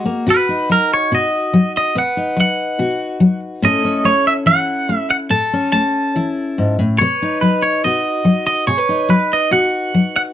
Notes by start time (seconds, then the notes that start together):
Already playing: F#4
0.06 A#3
0.27 B2 F#4 B4
0.49 D#4
0.70 F#3 A#4
0.94 C#5
1.12 B2 F#4 D#5
1.54 F#3
1.77 D#5
1.95 B2 B4 F#5
2.17 D#4
2.37 F#3 F#5
2.79 B2 F#4
3.20 F#3
3.62 A2 A3 C#4 E4 A4 D#5
3.85 C#4
4.05 A3 C#5
4.27 E5
4.46 E3 E4 F#5
4.89 A3
4.97 E5
5.10 F#5
5.30 A2 A4 A5
5.53 C#4
5.72 A3 A5
6.16 E3 E4
6.58 G#2
6.79 A2
6.99 B2 B4 C#5
7.22 D#4
7.41 F#3 B4
7.62 C#5
7.84 B2 F#4 D#5
8.25 F#3
8.47 D#5
8.67 B2 G#4 C#5
8.78 B4
8.89 D#4
9.09 F#3 B4
9.33 D#5
9.51 B2 F#4 F#5
9.95 F#3
10.16 F#5